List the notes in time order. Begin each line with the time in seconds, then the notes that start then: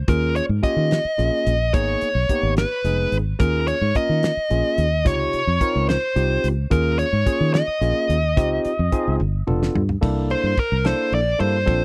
0.08 D#2 A#3 C#4 F4 G#4 A#4, kick, closed hi-hat
0.36 C#5, closed hi-hat
0.49 G#2
0.63 A#3 C#4 F4 G4 D#5, kick, closed hi-hat
0.76 D#3
0.91 snare, closed hi-hat
1.05 muted fingered electric bass stroke
1.18 A#1 A#3 C#4 F4 G#4, closed hi-hat
1.47 A#1, closed hi-hat
1.73 G#1 A#3 B3 D#4 G#4 C#5, kick, closed hi-hat
2.01 muted fingered electric bass stroke, closed hi-hat
2.15 B1
2.29 A#3 B3 D#4 G4, kick, closed hi-hat
2.43 G#1
2.57 B4, snare, closed hi-hat
2.84 F1 G#3 B3 D#4 G#4, closed hi-hat
3.12 G#1, closed hi-hat
3.40 D#2 A#3 C#4 F4 G#4 A#4, kick, closed hi-hat
3.68 C#5, closed hi-hat
3.81 G#2
3.95 A#3 C#4 F4 A#4 D#5, muted fingered electric bass stroke, kick, closed hi-hat
4.09 D#3
4.23 snare, closed hi-hat
4.37 muted fingered electric bass stroke
4.50 A#1 A#3 C#4 F4 G#4, closed hi-hat
4.78 D#2, closed hi-hat
5.05 C#2 C3 D#4 F4 G4 C#5, kick, closed hi-hat
5.33 muted fingered electric bass stroke, closed hi-hat
5.47 F2
5.61 C4 D#4 F4 A#4, muted fingered electric bass stroke, kick, closed hi-hat
5.76 C#2
5.89 C5, snare, closed hi-hat
6.16 C2 C4 D#4 F4 G4, closed hi-hat
6.44 C#2, closed hi-hat
6.70 D#2 A#3 C#4 F4 G#4 A#4, kick, closed hi-hat
6.99 C#5, closed hi-hat
7.13 G#2
7.26 A#3 C#4 F4 G#4, kick, closed hi-hat
7.41 D#3
7.54 D#5, snare, closed hi-hat
7.68 muted fingered electric bass stroke
7.81 A#1 A#3 C#4 F4 G#4, closed hi-hat
8.09 D#2, closed hi-hat
8.37 C#2 C4 D#4 F4 G4, kick, closed hi-hat
8.65 muted fingered electric bass stroke, closed hi-hat
8.79 F2
8.92 C4 D#4 F4 G#4, muted fingered electric bass stroke, kick, closed hi-hat
9.08 C#2
9.20 G1, high tom
9.47 F1 B3 D4 F4 A4, mid tom
9.63 snare
9.75 G2, floor tom
9.89 floor tom
10.01 C2 A#3 D4 E4 A4, kick, crash
10.30 C5, ride
10.44 G2
10.57 A#4, muted fingered electric bass stroke, kick, ride
10.72 C2
10.85 A#3 D4 E4 A4 C5, snare, ride
11.12 A#1 D5, ride
11.39 G2 A#3 D4 E4 A4 C5, ride
11.66 A#1 C4 D4 F4 A4, kick, ride